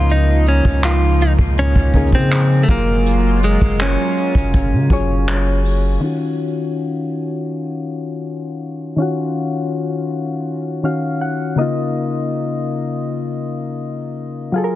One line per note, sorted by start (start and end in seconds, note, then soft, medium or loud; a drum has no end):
0.00 0.61 C#2 loud
0.00 0.91 C#3 medium
0.00 2.66 C#3 medium
0.00 2.66 F3 medium
0.00 0.91 A#3 medium
0.00 2.66 A#3 medium
0.00 0.91 D#4 medium
0.00 2.65 D#4 medium
0.00 0.12 F4 loud
0.00 0.92 F4 medium
0.09 0.48 D#4 loud
0.09 closed hi-hat medium
0.46 0.82 C#4 medium
0.46 closed hi-hat medium
0.65 1.36 C#2 loud
0.65 kick medium
0.83 1.22 F4 loud
0.83 clap loud
0.83 closed hi-hat medium
1.20 1.32 D#4 loud
1.20 closed hi-hat medium
1.39 1.75 C#2 loud
1.39 kick loud
1.57 2.10 C#4 loud
1.57 closed hi-hat medium
1.76 2.14 C#2 loud
1.76 kick medium
1.94 2.68 C#3 medium
1.94 2.69 A#3 medium
1.94 2.69 D#4 medium
1.94 2.69 G#4 medium
1.94 kick medium
1.94 closed hi-hat medium
2.07 closed hi-hat medium
2.12 2.66 C#3 loud
2.12 2.64 C4 loud
2.12 kick medium
2.19 closed hi-hat medium
2.31 clap loud
2.31 closed hi-hat medium
2.63 2.70 A3 medium
2.68 3.58 F#1 loud
2.68 3.87 F#3 medium
2.68 5.98 F#3 medium
2.68 5.99 G#3 medium
2.68 5.99 A#3 medium
2.68 3.40 A#3 loud
2.68 5.99 F4 medium
2.68 3.87 F4 medium
2.68 3.88 G#4 medium
2.68 3.88 A#4 medium
2.68 kick loud
2.68 closed hi-hat medium
3.06 closed hi-hat medium
3.43 3.82 G#3 medium
3.43 closed hi-hat medium
3.61 3.97 F#1 loud
3.61 kick medium
3.80 5.62 C#4 medium
3.80 clap loud
3.80 closed hi-hat medium
4.17 closed hi-hat soft
4.35 4.74 F#1 loud
4.35 kick loud
4.35 closed hi-hat medium
4.54 kick loud
4.54 closed hi-hat medium
4.73 4.90 C#3 loud
4.90 5.98 F#1 loud
4.90 5.70 F#3 medium
4.90 5.70 F4 medium
4.90 5.71 G#4 medium
4.90 5.71 C#5 loud
4.90 kick medium
4.90 closed hi-hat medium
5.28 clap loud
5.28 closed hi-hat medium
5.65 open hi-hat medium
6.00 8.93 D#3 medium
6.00 8.94 C#4 medium
6.00 8.95 F4 medium
6.05 8.96 F#4 medium
8.96 10.79 D#3 medium
8.96 10.80 C#4 medium
8.96 10.81 F4 medium
9.02 10.82 F#4 medium
10.83 11.57 D#3 medium
10.83 11.58 C#4 soft
10.83 11.59 F#4 medium
10.83 11.58 F5 soft
11.21 11.55 F#5 medium
11.56 14.49 C#3 medium
11.56 14.50 A#3 medium
11.56 14.51 D#4 medium
11.56 11.93 D#5 medium
11.61 14.52 F4 medium
14.52 14.76 F#3 medium
14.52 14.76 F4 medium
14.52 14.76 G#4 medium
14.58 14.62 A4 medium
14.64 14.76 A#4 medium